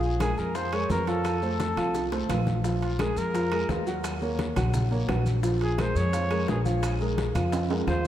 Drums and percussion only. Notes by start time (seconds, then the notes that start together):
0.03 high bongo, high conga, maracas
0.20 high bongo, high conga, high timbale, low timbale, short guiro, claves, maracas
0.38 high bongo, high conga, short guiro, maracas
0.55 high bongo, high conga, high timbale, long guiro, maracas
0.72 high bongo, high conga, high timbale, claves, maracas
0.90 high bongo, low bongo, high conga, low timbale, short guiro, maracas
1.07 high timbale, short guiro, maracas
1.25 high bongo, high conga, high timbale, long guiro, claves, maracas
1.42 high bongo, high conga, maracas
1.60 high bongo, high conga, high timbale, low timbale, short guiro, maracas
1.77 high bongo, high conga, high timbale, short guiro, claves, maracas
1.95 high bongo, high conga, long guiro, maracas
2.12 high bongo, high conga, high timbale, maracas
2.29 low bongo, high conga, high timbale, low timbale, short guiro, claves, maracas
2.47 low bongo, high conga, short guiro, maracas
2.64 high bongo, high conga, long guiro, maracas
2.82 high conga, high timbale, maracas
2.99 high bongo, high conga, high timbale, low timbale, short guiro, claves, maracas
3.17 short guiro, maracas
3.34 high bongo, high conga, high timbale, long guiro, maracas
3.52 high conga, high timbale, claves, maracas
3.69 high bongo, low bongo, high conga, low timbale, short guiro, maracas
3.87 short guiro, maracas
4.04 high bongo, high conga, high timbale, long guiro, claves, maracas
4.22 high bongo, high conga, maracas
4.39 high bongo, high conga, high timbale, low timbale, short guiro, maracas
4.56 high bongo, high conga, low conga, high timbale, short guiro, claves, maracas
4.74 high bongo, high conga, low conga, long guiro, maracas
4.91 high bongo, high conga, maracas
5.08 high bongo, low bongo, high conga, high timbale, low timbale, short guiro, claves, maracas
5.26 high conga, short guiro, maracas
5.43 high bongo, long guiro, maracas
5.61 high conga, high timbale, maracas
5.78 high bongo, high conga, high timbale, low timbale, short guiro, claves, maracas
5.96 short guiro, maracas
6.13 high bongo, high conga, high timbale, long guiro, maracas
6.31 high conga, high timbale, claves, maracas
6.48 high bongo, low bongo, high conga, low timbale, short guiro, maracas
6.66 high conga, short guiro, maracas
6.83 high bongo, high conga, high timbale, long guiro, claves, maracas
7.00 high bongo, high conga, maracas
7.18 high bongo, high conga, high timbale, low timbale, short guiro, maracas
7.35 high bongo, high conga, low conga, high timbale, short guiro, claves, maracas
7.52 high bongo, high timbale, long guiro, maracas
7.70 high bongo, high conga, high timbale, maracas
7.87 high bongo, low bongo, high conga, short guiro, claves, maracas